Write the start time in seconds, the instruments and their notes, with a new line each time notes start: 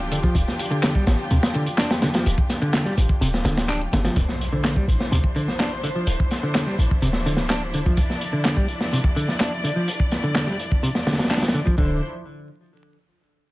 Already playing: 808-style bass D1, string section F3 D4 F4 G4
0.12 clean electric guitar D3, closed hi-hat
0.24 clean electric guitar F3, kick, closed hi-hat
0.35 808-style bass D1, kick, closed hi-hat
0.48 snare, closed hi-hat
0.59 closed hi-hat
0.71 clean electric guitar D3, closed hi-hat
0.83 snare, clap, closed hi-hat
0.95 clean electric guitar G3, kick
1.07 808-style bass A1, snare, closed hi-hat
1.19 closed hi-hat
1.30 808-style bass D2, clean electric guitar C3, closed hi-hat
1.43 snare, closed hi-hat
1.54 clean electric guitar D3, closed hi-hat
1.66 closed hi-hat
1.78 clean electric guitar D4, snare, clap, closed hi-hat
1.90 snare, closed hi-hat
2.02 clean electric guitar D3, snare, closed hi-hat
2.14 clean electric guitar F3, snare, closed hi-hat
2.26 808-style bass D1, closed hi-hat
2.38 kick, closed hi-hat
2.50 snare, closed hi-hat
2.62 clean electric guitar D3, closed hi-hat
2.73 snare, clap, closed hi-hat
2.86 clean electric guitar G3, snare, closed hi-hat
2.97 808-style bass A1, closed hi-hat
3.09 kick, closed hi-hat
3.21 808-style bass D1, clean electric guitar C3, closed hi-hat
3.33 snare, closed hi-hat
3.45 808-style bass D1, clean electric guitar D3, snare, closed hi-hat
3.57 snare, closed hi-hat
3.69 clean electric guitar D4, clap, closed hi-hat
3.81 closed hi-hat
3.93 808-style bass G1, clean electric guitar D3, snare, closed hi-hat
4.05 clean electric guitar F3, snare, closed hi-hat
4.16 808-style bass D1, string section F3 D4 E4 C5, kick, closed hi-hat, impact
4.29 snare
4.41 closed hi-hat
4.53 clean electric guitar D3
4.64 snare, clap, closed hi-hat
4.76 clean electric guitar G3, kick
4.88 808-style bass A1, closed hi-hat
5.00 snare
5.12 808-style bass D2, clean electric guitar C3, closed hi-hat
5.24 kick
5.36 clean electric guitar D3, closed hi-hat
5.48 snare
5.59 clean electric guitar D4, snare, clap, closed hi-hat
5.83 clean electric guitar D3, closed hi-hat
5.96 clean electric guitar F3
6.07 808-style bass D1, closed hi-hat
6.20 kick
6.31 snare, closed hi-hat
6.43 clean electric guitar D3
6.55 snare, clap, closed hi-hat
6.66 clean electric guitar G3, snare
6.79 808-style bass A1, closed hi-hat
6.91 kick
7.02 808-style bass D1, clean electric guitar C3, closed hi-hat
7.13 snare
7.26 clean electric guitar D3, closed hi-hat
7.37 snare
7.50 clean electric guitar D4, snare, clap, closed hi-hat
7.74 clean electric guitar D3, closed hi-hat
7.86 clean electric guitar F3, kick
7.97 string section D5, kick, closed hi-hat
8.10 snare
8.21 closed hi-hat
8.33 clean electric guitar D3
8.45 snare, clap, closed hi-hat
8.57 clean electric guitar G3, kick
8.68 closed hi-hat
8.80 snare
8.93 clean electric guitar C3, closed hi-hat
9.04 kick
9.16 clean electric guitar D3, closed hi-hat
9.28 snare
9.40 clean electric guitar D4, snare, clap, closed hi-hat
9.64 clean electric guitar D3, closed hi-hat
9.76 clean electric guitar F3
9.88 closed hi-hat
10.00 kick
10.11 snare, closed hi-hat
10.24 clean electric guitar D3
10.35 snare, clap, closed hi-hat
10.47 clean electric guitar G3, snare
10.59 closed hi-hat
10.72 kick
10.83 clean electric guitar C3, closed hi-hat
10.95 snare
11.07 clean electric guitar D3, snare, closed hi-hat
11.13 snare, closed hi-hat
11.19 snare, closed hi-hat
11.24 snare, closed hi-hat
11.30 clean electric guitar D4, snare, clap, closed hi-hat
11.37 snare, closed hi-hat
11.42 snare, closed hi-hat
11.48 snare, closed hi-hat
11.54 clean electric guitar D3, closed hi-hat
11.66 clean electric guitar F3, kick
11.78 808-style bass D1, clean electric guitar D3, string section F3 D4 E4 C5, kick